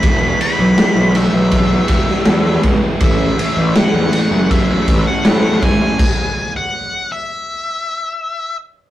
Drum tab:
CC |----------------|----------------|x---------------|
RD |x-x-x-x-x-x-x-x-|x-x-x-x-x-x-x-x-|----------------|
SD |----o------ooo--|----o-------oo--|----------------|
BD |o-------o-o---o-|o-------o-o---o-|o---------------|